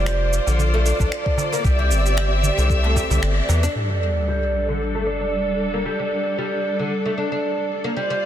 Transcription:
0.00 0.40 F1 medium
0.00 1.63 F4 medium
0.00 1.63 C5 medium
0.00 3.72 D5 medium
0.06 0.46 G3 medium
0.06 finger snap medium
0.06 shaker soft
0.33 shaker medium
0.47 0.93 A#1 medium
0.47 0.59 D3 medium
0.47 darbuka ka medium
0.47 shaker soft
0.59 darbuka dum medium
0.59 shaker soft
0.74 0.85 A3 medium
0.86 0.99 D4 medium
0.86 shaker medium
1.00 1.08 A#1 loud
1.00 1.51 D4 medium
1.00 kick medium
1.00 shaker soft
1.12 finger snap medium
1.12 shaker soft
1.26 kick loud
1.26 darbuka ka soft
1.37 darbuka tek medium
1.37 darbuka dum medium
1.37 shaker medium
1.52 1.64 A#3 medium
1.52 darbuka ka medium
1.52 shaker soft
1.64 1.92 C2 medium
1.64 1.78 G3 medium
1.64 3.73 C4 medium
1.64 3.73 G4 medium
1.64 3.73 E5 medium
1.64 kick loud
1.64 shaker soft
1.79 2.16 G3 medium
1.91 2.51 G1 medium
1.91 shaker medium
2.06 shaker soft
2.17 2.56 G3 medium
2.17 finger snap loud
2.17 shaker soft
2.43 darbuka dum medium
2.43 shaker medium
2.57 3.03 C2 medium
2.57 2.69 D3 medium
2.57 darbuka ka medium
2.57 shaker soft
2.70 kick loud
2.70 shaker soft
2.83 2.95 A3 medium
2.83 darbuka ka medium
2.96 3.09 G4 medium
2.96 kick medium
2.96 darbuka ka medium
2.96 darbuka tek soft
2.96 shaker medium
3.10 3.19 C2 medium
3.10 3.17 E4 medium
3.10 darbuka tek medium
3.10 darbuka dum medium
3.10 shaker soft
3.23 3.41 G1 medium
3.23 finger snap medium
3.23 shaker soft
3.49 3.68 E2 loud
3.49 3.62 E3 medium
3.49 darbuka ka soft
3.49 darbuka tek medium
3.49 shaker medium
3.63 3.74 D4 loud
3.63 darbuka ka medium
3.63 shaker soft
3.75 3.88 G3 medium
3.75 7.93 G3 medium
3.75 7.93 D4 medium
3.75 7.93 A4 medium
3.75 sub drop medium
3.89 4.27 G3 medium
4.28 4.67 G3 medium
4.69 4.80 D3 medium
4.95 5.06 A3 medium
5.06 5.19 D4 medium
5.21 5.72 D4 medium
5.73 5.85 A#3 medium
5.86 5.98 G3 medium
6.00 6.37 G3 medium
6.38 6.78 G3 medium
6.79 6.91 D3 medium
7.05 7.16 A3 medium
7.18 7.30 D4 medium
7.32 7.83 D4 medium
7.84 7.96 A#3 medium
7.96 8.09 G3 medium
7.96 8.26 F4 medium
7.96 8.26 C5 medium
7.96 8.26 D5 medium
8.10 8.26 G3 medium

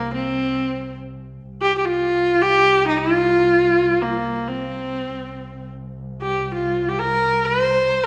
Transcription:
0.00 1.50 C2 medium
0.00 0.13 A#3 medium
0.14 0.97 C4 medium
1.51 5.15 C2 medium
1.62 1.76 G4 medium
1.78 1.86 G4 medium
1.85 2.44 F4 loud
2.42 2.87 G4 loud
2.88 2.99 D#4 medium
2.98 4.03 F4 medium
4.02 4.49 A#3 medium
4.48 5.69 C4 medium
5.16 8.06 C2 medium
6.22 6.53 G4 medium
6.54 6.90 F4 medium
6.88 7.01 G4 medium
6.99 7.47 A#4 medium
7.45 8.05 C5 medium

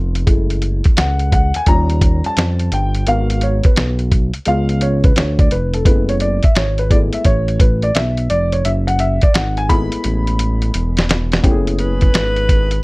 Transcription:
0.00 0.26 F1 loud
0.00 0.23 A3 medium
0.00 0.23 B3 soft
0.00 0.24 F4 medium
0.15 closed hi-hat medium
0.26 0.82 F#1 medium
0.26 1.27 G#3 soft
0.26 1.28 A3 soft
0.26 1.28 E4 medium
0.26 kick loud
0.26 closed hi-hat medium
0.50 closed hi-hat medium
0.62 closed hi-hat medium
0.84 0.90 C#2 soft
0.84 kick medium
0.84 closed hi-hat soft
0.97 1.52 C#2 medium
0.97 1.32 F#5 medium
0.97 snare loud
0.97 closed hi-hat medium
1.19 closed hi-hat soft
1.32 1.56 F#5 medium
1.32 kick medium
1.32 closed hi-hat medium
1.54 1.60 D#2 soft
1.54 1.67 G#5 loud
1.54 closed hi-hat medium
1.66 2.22 D#2 loud
1.66 3.02 G3 medium
1.66 3.03 C#4 soft
1.66 3.03 F4 medium
1.66 2.21 A#5 loud
1.66 kick medium
1.66 closed hi-hat medium
1.90 closed hi-hat soft
2.01 kick medium
2.01 closed hi-hat medium
2.24 2.30 F2 soft
2.24 2.74 A5 loud
2.24 closed hi-hat soft
2.37 2.70 F2 medium
2.37 snare loud
2.37 closed hi-hat medium
2.59 closed hi-hat medium
2.72 3.05 G1 loud
2.72 3.05 G5 loud
2.72 closed hi-hat medium
2.95 closed hi-hat soft
3.07 3.62 G#1 loud
3.07 4.07 B3 soft
3.07 4.08 F#4 medium
3.07 4.07 A#4 medium
3.07 3.43 F5 medium
3.07 closed hi-hat medium
3.30 closed hi-hat medium
3.41 3.66 C#5 medium
3.41 closed hi-hat medium
3.63 3.70 B1 soft
3.63 3.97 B4 medium
3.63 kick medium
3.63 closed hi-hat medium
3.76 4.31 B1 loud
3.76 snare loud
3.76 closed hi-hat medium
3.99 closed hi-hat soft
4.12 kick medium
4.12 closed hi-hat medium
4.34 4.39 C#2 soft
4.34 closed hi-hat medium
4.45 5.13 C#2 loud
4.45 4.96 G#3 medium
4.45 4.97 B3 medium
4.45 4.97 F4 medium
4.45 4.83 F5 loud
4.45 closed hi-hat medium
4.69 closed hi-hat soft
4.81 5.03 C#5 medium
4.81 closed hi-hat medium
5.04 5.17 B4 medium
5.04 kick medium
5.04 closed hi-hat soft
5.16 5.49 D2 medium
5.16 5.38 C#5 medium
5.16 snare loud
5.16 closed hi-hat medium
5.39 5.50 D5 medium
5.39 kick loud
5.39 closed hi-hat soft
5.51 5.84 F1 medium
5.51 5.75 B4 medium
5.51 closed hi-hat medium
5.74 5.86 A4 medium
5.74 closed hi-hat medium
5.85 6.40 F#1 loud
5.85 6.36 G#3 medium
5.85 6.36 A3 soft
5.85 6.36 B3 soft
5.85 6.36 E4 medium
5.85 6.07 B4 medium
5.85 kick loud
5.85 closed hi-hat medium
6.09 6.14 C#5 medium
6.09 closed hi-hat soft
6.20 6.42 D5 medium
6.20 closed hi-hat medium
6.43 6.49 G#1 soft
6.43 6.55 E5 medium
6.43 kick medium
6.43 closed hi-hat medium
6.55 7.10 G#1 loud
6.55 6.79 C#5 medium
6.55 snare loud
6.55 closed hi-hat medium
6.78 6.90 B4 medium
6.78 closed hi-hat soft
6.90 7.22 G#3 medium
6.90 7.22 A3 medium
6.90 7.22 B3 soft
6.90 7.22 E4 medium
6.90 6.96 D5 medium
6.90 kick loud
6.90 closed hi-hat medium
7.13 7.18 A1 soft
7.13 7.26 E5 medium
7.13 closed hi-hat medium
7.25 7.91 A1 loud
7.25 7.61 C#5 loud
7.25 kick medium
7.25 closed hi-hat medium
7.48 closed hi-hat soft
7.60 7.84 B4 medium
7.60 kick loud
7.60 closed hi-hat medium
7.82 7.95 D5 medium
7.82 closed hi-hat soft
7.95 8.28 B1 medium
7.95 8.27 E5 medium
7.95 snare loud
7.95 closed hi-hat medium
8.17 closed hi-hat soft
8.30 8.63 F1 medium
8.30 8.53 D5 loud
8.30 closed hi-hat medium
8.52 8.65 C#5 medium
8.52 closed hi-hat soft
8.65 9.20 F#1 loud
8.65 8.70 E5 medium
8.65 closed hi-hat medium
8.87 9.00 F#5 loud
8.87 closed hi-hat medium
8.99 9.21 E5 medium
8.99 closed hi-hat medium
9.21 9.28 G#1 soft
9.21 9.35 D5 medium
9.21 kick medium
9.21 closed hi-hat medium
9.34 9.89 G#1 loud
9.34 9.55 F#5 medium
9.34 snare loud
9.34 closed hi-hat medium
9.57 9.69 G#5 loud
9.57 closed hi-hat soft
9.69 11.39 G#3 medium
9.69 11.40 A3 medium
9.69 11.40 B3 medium
9.69 11.40 E4 medium
9.69 11.40 B5 loud
9.69 kick medium
9.69 closed hi-hat medium
9.92 9.97 A1 soft
9.92 closed hi-hat medium
10.04 10.71 A1 loud
10.04 closed hi-hat medium
10.27 closed hi-hat soft
10.39 closed hi-hat medium
10.62 closed hi-hat soft
10.74 11.41 E1 medium
10.74 closed hi-hat medium
10.97 snare medium
10.97 closed hi-hat medium
11.09 snare loud
11.09 closed hi-hat medium
11.32 snare medium
11.32 closed hi-hat medium
11.42 12.10 F#1 loud
11.42 12.66 A3 medium
11.42 12.66 B3 medium
11.42 12.66 C#4 medium
11.42 12.67 E4 medium
11.42 11.53 G4 medium
11.42 kick loud
11.42 closed hi-hat medium
11.51 12.70 G#4 medium
11.67 closed hi-hat medium
11.79 12.84 B4 loud
11.79 closed hi-hat medium
12.01 kick medium
12.01 closed hi-hat medium
12.14 12.80 G#1 medium
12.14 snare loud
12.14 closed hi-hat medium
12.36 closed hi-hat soft
12.49 kick medium
12.49 closed hi-hat medium
12.71 closed hi-hat medium

